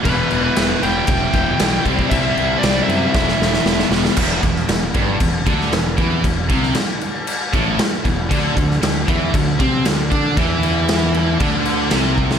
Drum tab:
CC |x-x-x-x-x-x-x-x-|x-x-x-x---------|x-x-x-x-x-x-x-x-|x-x-x-x-x-x-x-x-|
SD |----o-------o---|----o---oooooooo|---oo------oo---|---oo-------o---|
BD |o-------o-o---oo|o-------o-------|o-o---o-o-o---o-|o-o-------o---o-|

CC |x-x-x-x-x-x-x-x-|x-x-x-x-x-x-x---|
SD |---oo-------o---|----o-------o--o|
BD |o-o---o-o-o---o-|o-------o-----o-|